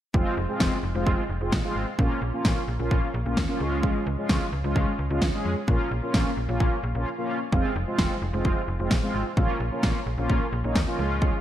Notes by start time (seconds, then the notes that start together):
0.14 F1 G#3 C4 F4, kick
0.37 F1
0.49 G#3 C4 F4
0.60 F1, kick, snare
0.83 F1
0.95 F1 G#3 C4 F4
1.07 F1, kick
1.29 F1
1.41 F1 G#3 C4 F4
1.52 A#1, kick, snare
1.64 G#3 C4 F4
1.76 G#1
1.99 A#1 A#3 C#4 F4, kick
2.22 A#1
2.33 A#3 C#4 F4
2.45 A#1, kick, snare
2.68 A#1
2.79 A#1 A#3 C#4 F4
2.91 A#1, kick
3.14 A#1
3.26 A#1 A#3 C#4 F4
3.37 D#2, kick, snare
3.49 A#3 C#4 F4
3.60 C#2 G#3 C#4 F4
3.83 kick
4.07 C#2
4.18 G#3 C#4 F4
4.29 C#2, kick, snare
4.53 C#2
4.64 C#2 G#3 C#4 F4
4.76 C#2, kick
4.99 C#2
5.10 C#2 G#3 C#4 F4
5.22 C#2, kick, snare
5.33 G#3 C#4 G#4
5.45 F2
5.68 A#1 A#3 C#4 F4, kick
5.91 A#1
6.03 A#3 C#4 F4
6.14 A#1, kick, snare
6.37 A#1
6.49 A#1 A#3 C#4 F4
6.60 A#1, kick
6.83 A#1
6.95 A#1 A#3 C#4 F4
7.18 A#3 C#4 F4
7.52 F1 G#3 C4 F4, kick
7.76 F1
7.87 G#3 C4 F4
7.99 F1, kick, snare
8.22 F1
8.33 F1 G#3 C4 F4
8.45 F1, kick
8.68 F1
8.79 F1 G#3 C4 F4
8.91 A#1, kick, snare
9.03 G#3 C4 F4
9.14 G#1
9.37 A#1 A#3 C#4 F4, kick
9.60 A#1
9.72 A#3 C#4 F4
9.83 A#1, kick, snare
10.06 A#1
10.18 A#1 A#3 C#4 F4
10.30 A#1, kick
10.53 A#1
10.64 A#1 A#3 C#4 D#4
10.75 D#2, kick, snare
10.87 A#3 C#4 F4
10.99 C#2 G#3 C#4 F4
11.22 kick